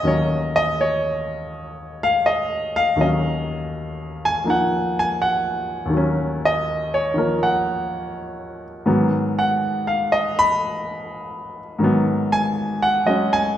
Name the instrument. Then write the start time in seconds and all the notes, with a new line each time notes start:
grand piano
Already playing: C#5 D#5
0.03 D#2 D#3 F#3 C#4
0.07 C#5
0.56 D#5
0.81 C#5
2.03 F5
2.26 D#5
2.76 F5
2.96 D#2 D#3 F#3
3.01 C#4 D#5
4.25 G#5
4.44 F3 A#3 D#4
4.50 F#5
4.99 G#5
5.22 F#5
5.86 D#2
5.90 D#3 F#3
5.97 C#4
6.45 D#5
6.94 C#5
7.14 D#3 F3 A#3 A#4
7.43 F#5
8.86 G#2 D#3 F#3 B3
9.39 F#5
9.87 F5
10.12 D#5
10.39 B5
11.79 G#2 D#3 F#3
11.84 B3
12.32 G#5
12.82 F#5
13.06 F#3 G#3 C#4 D#5
13.33 G#5